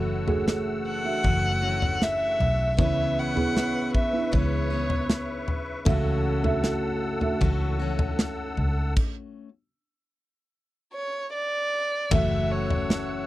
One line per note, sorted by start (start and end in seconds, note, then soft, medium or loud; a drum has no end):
0.00 1.20 F#1 medium
0.00 1.23 F#2 medium
0.00 1.24 C#3 medium
0.00 1.23 E3 medium
0.00 0.24 A3 medium
0.00 1.23 A3 medium
0.00 2.76 A3 medium
0.00 1.25 C#4 medium
0.00 0.24 F#4 medium
0.00 1.25 F#4 medium
0.00 0.24 E5 medium
0.00 2.74 F#5 medium
0.00 2.76 E6 medium
0.27 1.01 A3 medium
0.27 1.01 F#4 medium
0.27 1.01 G#4 medium
0.27 floor tom medium
0.48 snare loud
0.86 2.04 F#5 loud
1.04 2.51 A3 medium
1.04 2.51 F#4 medium
1.04 2.52 E5 medium
1.23 2.36 F#1 medium
1.23 1.62 E3 medium
1.23 1.63 A3 medium
1.23 1.62 C#4 medium
1.23 1.61 F#4 medium
1.23 kick medium
1.23 floor tom medium
1.62 2.78 E3 soft
1.62 2.79 A3 soft
1.62 2.81 C#4 soft
1.62 2.78 F#4 soft
1.82 floor tom medium
2.02 2.79 E5 loud
2.02 snare medium
2.40 2.78 B1 medium
2.40 floor tom medium
2.77 4.29 C#2 medium
2.77 4.32 C#3 medium
2.77 3.90 C#3 medium
2.77 4.31 E3 medium
2.77 3.33 B3 medium
2.77 4.32 B3 medium
2.77 4.34 C#4 medium
2.77 3.33 E4 medium
2.77 5.84 B4 medium
2.77 3.34 C#5 medium
2.77 5.84 E5 medium
2.77 3.20 E5 loud
2.77 5.84 C#6 medium
2.77 kick medium
2.77 floor tom loud
2.82 4.34 G#4 medium
3.18 3.95 F#5 medium
3.35 4.09 B3 medium
3.35 4.10 E4 medium
3.35 4.10 G#4 medium
3.35 floor tom medium
3.57 snare medium
3.95 4.35 E5 medium
3.95 kick medium
4.13 5.60 B3 medium
4.13 5.60 E4 medium
4.13 5.60 E5 medium
4.32 5.83 C#2 medium
4.32 4.71 E3 medium
4.32 4.71 B3 medium
4.32 4.71 C#4 medium
4.32 4.69 G#4 medium
4.32 5.48 C#5 medium
4.32 kick medium
4.32 floor tom medium
4.70 5.87 B3 soft
4.70 5.88 C#4 soft
4.70 5.86 G#4 soft
4.90 floor tom medium
5.10 snare loud
5.48 floor tom medium
5.85 7.38 C#2 medium
5.85 7.41 C#3 medium
5.85 6.99 C#3 medium
5.85 7.39 E3 medium
5.85 6.41 A3 medium
5.85 7.41 A3 medium
5.85 7.42 C#4 medium
5.85 6.42 F#4 medium
5.85 8.94 A4 medium
5.85 6.42 E5 loud
5.85 8.94 F#5 medium
5.85 8.94 E6 medium
5.85 kick loud
5.85 floor tom loud
5.90 7.43 F#4 medium
6.43 7.18 A3 medium
6.43 7.18 F#4 medium
6.43 7.19 E5 medium
6.43 floor tom medium
6.64 snare medium
7.21 8.69 A3 medium
7.21 8.70 F#4 medium
7.21 8.70 E5 medium
7.21 floor tom soft
7.40 8.54 C#2 medium
7.40 7.80 E3 medium
7.40 7.81 A3 medium
7.40 7.80 C#4 medium
7.40 7.78 F#4 medium
7.40 kick medium
7.40 floor tom medium
7.79 9.48 A3 soft
7.79 9.48 C#4 medium
7.79 9.48 F#4 medium
7.99 floor tom medium
8.19 snare loud
8.57 8.94 C#2 medium
8.57 floor tom medium
8.96 kick medium
8.96 crash medium
10.93 11.30 C#5 medium
11.33 12.14 D5 loud
12.11 13.27 F#1 loud
12.11 13.27 F#2 medium
12.11 13.27 C#3 medium
12.11 13.27 E3 medium
12.11 13.27 A3 medium
12.11 13.27 C#4 medium
12.11 13.27 F#4 medium
12.11 13.26 F#4 medium
12.11 12.52 E5 medium
12.11 13.27 E5 medium
12.11 13.27 F#5 medium
12.11 13.27 E6 medium
12.11 kick loud
12.11 floor tom loud
12.11 crash medium
12.51 13.27 C#5 medium
12.70 floor tom medium
12.90 snare loud